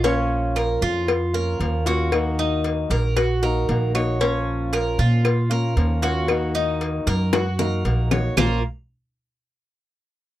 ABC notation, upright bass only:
X:1
M:4/4
L:1/8
Q:1/4=115
K:Bbm
V:1 name="Upright bass" clef=bass
B,,,3 F,,3 E,,2- | E,,3 B,,,3 B,,,2- | B,,,3 B,,3 E,,2- | E,,3 G,,3 B,,,2 |
B,,, z6 z |]